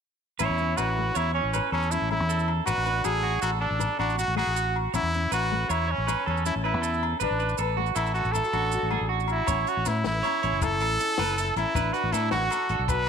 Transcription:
0.39 fingered electric bass A1, nylon-string guitar A2 C#4, trumpet E4, clean electric guitar C#5, low agogo, maracas
0.50 fingered electric bass E2
0.58 nylon-string guitar C#4, maracas
0.77 fingered electric bass A1, nylon-string guitar E4, trumpet F#4, clean electric guitar B4, low agogo, maracas
0.98 nylon-string guitar A3
1.15 fingered electric bass E2, trumpet E4, clean electric guitar C#5, low agogo, maracas
1.34 trumpet C#4, clean electric guitar C#5
1.44 fingered electric bass A1
1.53 nylon-string guitar A2 C#5, clean electric guitar B4, low agogo, maracas
1.72 fingered electric bass E2, trumpet C#4, clean electric guitar A4, muted nylon-string guitar stroke, low agogo
1.83 maracas
1.91 nylon-string guitar C#4, trumpet E4, maracas
2.02 fingered electric bass A1
2.11 nylon-string guitar A3, trumpet E4, low agogo
2.20 fingered electric bass E2
2.29 clean electric guitar A4, maracas
2.39 maracas
2.48 low agogo
2.66 fingered electric bass A1, nylon-string guitar A2 D4, trumpet F#4, clean electric guitar B4, low agogo, maracas
2.78 fingered electric bass A1
2.86 nylon-string guitar D4, clean electric guitar B4, maracas
3.04 fingered electric bass A1, nylon-string guitar F#4, trumpet G#4, clean electric guitar A4, low agogo, maracas
3.22 clean electric guitar F#4, muted nylon-string guitar stroke
3.42 fingered electric bass A1, trumpet F#4, clean electric guitar A4, low agogo, maracas
3.61 trumpet D4, clean electric guitar A4
3.71 fingered electric bass A1
3.79 nylon-string guitar A2, muted nylon-string guitar stroke, low agogo, maracas
3.99 fingered electric bass A1, nylon-string guitar D4, trumpet D4, clean electric guitar F#4, low agogo
4.10 maracas
4.18 trumpet F#4, muted nylon-string guitar stroke, maracas
4.28 fingered electric bass A1
4.35 nylon-string guitar A3, trumpet F#4, clean electric guitar G#4, low agogo
4.47 fingered electric bass A1
4.56 clean electric guitar F#4, maracas
4.76 low agogo
4.94 fingered electric bass A1, nylon-string guitar A2 C#4, trumpet E4, muted clean electric guitar stroke, low agogo, maracas
5.03 fingered electric bass E2
5.14 nylon-string guitar C#4, maracas
5.32 fingered electric bass A1, trumpet F#4, clean electric guitar B4, low agogo, maracas
5.52 nylon-string guitar A3
5.69 fingered electric bass E2, trumpet E4, clean electric guitar C#5, low agogo, maracas
5.88 trumpet C#4, clean electric guitar C#5
5.98 fingered electric bass A1
6.07 nylon-string guitar A2 C#5, clean electric guitar B4, low agogo, maracas
6.26 fingered electric bass E2, nylon-string guitar C#4, trumpet C#4, clean electric guitar A4, low agogo
6.37 maracas
6.46 nylon-string guitar C#4, trumpet E4, maracas
6.56 fingered electric bass A1
6.64 trumpet E4, clean electric guitar B4, low agogo
6.74 fingered electric bass E2
6.82 clean electric guitar A4, maracas
6.94 maracas
7.03 low agogo
7.20 fingered electric bass A1, nylon-string guitar A2 B4, trumpet D4, clean electric guitar B4, low agogo, maracas
7.31 fingered electric bass A1
7.40 nylon-string guitar D4, clean electric guitar B4, maracas
7.49 maracas
7.58 fingered electric bass A1, clean electric guitar A4, nylon-string guitar B4, low agogo, maracas
7.77 nylon-string guitar A3, clean electric guitar F#4
7.86 maracas
7.95 fingered electric bass A1, trumpet E4, clean electric guitar A4, low agogo, maracas
8.07 maracas
8.14 trumpet F#4, clean electric guitar A4, maracas
8.25 fingered electric bass A1, maracas
8.32 nylon-string guitar A2 E4, trumpet A4, low agogo, maracas
8.44 nylon-string guitar F#4, maracas
8.53 fingered electric bass A1, nylon-string guitar D4, clean electric guitar F#4, low agogo, maracas
8.72 nylon-string guitar F#4, maracas
8.83 fingered electric bass A1
8.91 nylon-string guitar A3, clean electric guitar G#4, low agogo
9.01 fingered electric bass A1
9.09 clean electric guitar F#4
9.20 maracas
9.28 trumpet E4, low agogo, maracas
9.47 fingered electric bass A1, nylon-string guitar C#4, clean electric guitar C#5, muted nylon-string guitar stroke, kick, closed hi-hat, low agogo, maracas
9.67 trumpet F#4, closed hi-hat, maracas
9.77 fingered electric bass A1
9.86 fingered electric bass A2, nylon-string guitar C#4, trumpet E4, snare, closed hi-hat, low agogo, maracas
10.04 fingered electric bass A1, nylon-string guitar A3, trumpet E4, snare, closed hi-hat
10.23 nylon-string guitar C#4, clean electric guitar C#5, closed hi-hat, low agogo
10.43 fingered electric bass A1, nylon-string guitar C#4, clean electric guitar C#5, closed hi-hat
10.53 fingered electric bass F#1
10.61 nylon-string guitar A2 E4, trumpet A4, muted clean electric guitar stroke, kick, closed hi-hat, low agogo, maracas
10.80 fingered electric bass A1, clean electric guitar A4, closed hi-hat, low agogo, maracas
10.99 nylon-string guitar C#4, closed hi-hat, maracas
11.18 fingered electric bass F#1, nylon-string guitar A3, clean electric guitar B4, snare, closed hi-hat, low agogo
11.38 nylon-string guitar E4, clean electric guitar A4, closed hi-hat, maracas
11.56 fingered electric bass A1, nylon-string guitar C#4, trumpet E4, closed hi-hat, low agogo
11.75 fingered electric bass A1, nylon-string guitar A2 D4, clean electric guitar B4, kick, closed hi-hat, low agogo, maracas
11.93 trumpet F#4, clean electric guitar B4, closed hi-hat, maracas
12.04 fingered electric bass A1
12.12 fingered electric bass A2, nylon-string guitar D4, trumpet E4, clean electric guitar A4, snare, closed hi-hat, low agogo, maracas
12.31 fingered electric bass A1, nylon-string guitar A3, trumpet F#4, clean electric guitar F#4, snare, closed hi-hat
12.50 nylon-string guitar D4, clean electric guitar A4, closed hi-hat, low agogo, maracas
12.69 fingered electric bass A1, nylon-string guitar D4, clean electric guitar A4, closed hi-hat
12.79 fingered electric bass B1
12.88 nylon-string guitar A2 F#4, trumpet B4, kick, closed hi-hat, low agogo, maracas

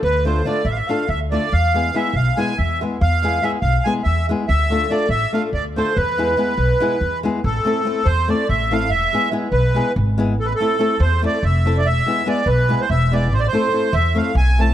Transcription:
0.03 upright bass D2, accordion B4
0.25 nylon-string guitar A3 D4 F4 A4, accordion C5
0.45 nylon-string guitar A3 D4 F4 A4, accordion D5
0.65 upright bass A1, accordion E5
0.71 accordion F5
0.75 accordion E5
0.87 nylon-string guitar A3 D4 F4 A4, accordion F5
1.09 upright bass D2, accordion E5
1.32 nylon-string guitar A3 D4 F4 A4, accordion D5
1.53 upright bass E2, accordion F5
1.74 nylon-string guitar G#3 B3 E4 G#4
1.94 nylon-string guitar G#3 B3 E4 G#4, accordion E5
2.14 upright bass B1, accordion F5
2.37 nylon-string guitar G#3 B3 E4 G#4, accordion G#5
2.58 upright bass E2, accordion E5
2.81 nylon-string guitar G#3 B3 E4 G#4
3.01 upright bass E2, accordion F5
3.22 nylon-string guitar G#3 B3 E4 G#4
3.42 nylon-string guitar G#3 B3 E4 G#4, accordion E5
3.62 upright bass B1, accordion F5
3.84 nylon-string guitar G#3 B3 E4 G#4, accordion G#5
4.03 upright bass E2, accordion E5
4.29 nylon-string guitar G#3 B3 E4 G#4
4.48 upright bass D2, accordion E5
4.70 nylon-string guitar A3 D4 F4 A4
4.90 nylon-string guitar A3 D4 F4 A4, accordion D5
5.09 upright bass A1, accordion E5
5.33 nylon-string guitar A3 D4 F4 A4, accordion F5
5.53 upright bass D2, accordion D5
5.76 nylon-string guitar A3 D4 F4 A4, accordion C5
5.96 upright bass E2, accordion B4
6.18 nylon-string guitar G#3 B3 E4 G#4
6.37 nylon-string guitar G#3 B3 E4 G#4
6.58 upright bass B1
6.80 nylon-string guitar G#3 B3 E4 G#4
7.01 upright bass E2
7.23 nylon-string guitar G#3 B3 E4 G#4
7.44 upright bass A1, accordion A4
7.65 nylon-string guitar A3 C4 E4 A4
7.85 nylon-string guitar A3 C4 E4 A4
8.05 upright bass E2, accordion C5
8.28 nylon-string guitar A3 C4 E4 A4, accordion D5
8.49 upright bass A1, accordion E5
8.71 nylon-string guitar A3 C4 E4 A4, accordion F5
8.90 upright bass E1, accordion E5
9.13 nylon-string guitar G#3 B3 E4 G#4
9.31 nylon-string guitar G#3 B3 E4 G#4
9.52 upright bass B1, accordion B4
9.75 nylon-string guitar G#3 B3 E4 G#4
9.96 upright bass G#1
10.18 nylon-string guitar G#3 B3 E4 G#4
10.39 upright bass A1, accordion A4
10.46 accordion B4
10.55 accordion A4
10.60 nylon-string guitar A3 C4 E4 A4
10.79 nylon-string guitar A3 C4 E4 A4
11.00 upright bass E2, accordion C5
11.22 nylon-string guitar A3 C4 E4 A4, accordion D5
11.43 upright bass F1, accordion E5
11.65 nylon-string guitar A3 C4 E4 A4
11.77 accordion D5
11.86 upright bass E1, accordion E5
12.06 nylon-string guitar G#3 B3 E4 G#4
12.26 nylon-string guitar G#3 B3 E4 G#4, accordion D5
12.46 upright bass B1, accordion B4
12.69 nylon-string guitar G#3 B3 E4 G#4
12.81 accordion C5
12.90 upright bass E1, accordion E5
13.12 nylon-string guitar G#3 B3 E4 G#4, accordion D5
13.33 upright bass A1, accordion C5
13.40 accordion D5
13.48 accordion C5
13.53 nylon-string guitar A3 C4 E4 A4
13.72 nylon-string guitar A3 C4 E4 A4
13.93 upright bass E2, accordion E5
14.15 nylon-string guitar A3 C4 E4 A4, accordion F5
14.35 upright bass B1, accordion G#5
14.59 nylon-string guitar A3 C4 E4 A4, accordion A5

